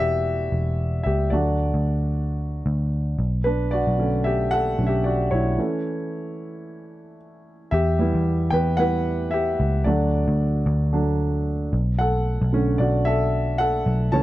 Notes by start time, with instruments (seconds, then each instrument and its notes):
Already playing: picked electric bass E1, grand piano E3 G3 B3 E4 F#4 B4 D5 E5
0.00 grand piano G4
0.52 picked electric bass E1
1.03 picked electric bass C#2, grand piano G4 E5
1.30 picked electric bass D2, grand piano F#3 A3 D4 F#4 D5
1.74 picked electric bass D2
2.66 picked electric bass D2
3.19 picked electric bass B1
3.44 grand piano D4 B4
3.71 grand piano F#4 D5
3.87 picked electric bass B1
3.98 grand piano D3 A3 C#4
4.24 grand piano G4 E5
4.51 grand piano A4 F#5
4.78 picked electric bass B1, grand piano D3 A3 C#4
4.87 grand piano G4 E5
5.04 grand piano F#4 D5
5.31 picked electric bass B1, grand piano E4 C#5
5.58 grand piano E3 A3 C#4
7.71 picked electric bass E2, grand piano G4 E5
7.99 grand piano G3 B3 E4
8.14 picked electric bass E2
8.50 picked electric bass E2, grand piano B4 G5
8.77 grand piano G3 B3 E4 B4 F#5
9.31 grand piano G4 E5
9.60 picked electric bass C#2
9.84 picked electric bass D2, grand piano F#3 A3 D4 F#4 D5
10.28 picked electric bass D2
10.66 picked electric bass D2
10.93 grand piano F#3 A3 D4
11.73 picked electric bass B1
11.98 grand piano A4 F#5
12.42 picked electric bass B1
12.52 grand piano D3 A3 C#4
12.78 picked electric bass B1, grand piano F#4 D5
13.05 grand piano A4 E5
13.58 grand piano A4 F#5
13.86 picked electric bass B1
14.12 picked electric bass C#2, grand piano E3 A3 C#4 C#5 A5